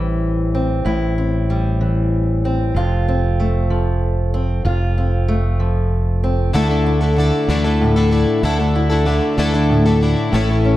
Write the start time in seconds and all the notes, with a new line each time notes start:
Already playing: A1 A2 E3 G3 C4 E4
0.55 C4
0.85 A1 A2 E4
1.18 C4
1.50 G3
1.81 E3
2.45 C4
2.74 F1 F2 F4
3.08 C4
3.40 A3
3.70 F3
4.34 C4
4.65 F1 F2 F4
4.98 C4
5.28 A3
5.60 F3
6.24 C4
6.53 D2 D3 E3 A3 D4 E4 A4
6.70 A3 D4 E4 A4
6.86 E4
7.01 A3 D4 E4 A4
7.17 D3 A3 D4 E4 A4
7.48 D2 D3 E3 A3 D4 E4 A4
7.64 A3 D4 E4 A4
7.81 A2
7.96 A3 D4 E4 A4
8.11 A3 D4 E4 A4
8.43 D2 D3 E3 A3 D4 E4 A4
8.59 A3 D4 E4 A4
8.75 E4
8.90 A3 D4 E4 A4
9.05 D3 A3 D4 E4 A4
9.38 D2 D3 E3 A3 D4 E4 A4
9.54 A3 D4 E4 A4
9.69 A2
9.86 A3 D4 E4 A4
10.01 A3 D4 E4 A4
10.32 A1 A2 E3 A3 C#4 E4 A4
10.49 A3 C#4 E4 A4
10.65 C#4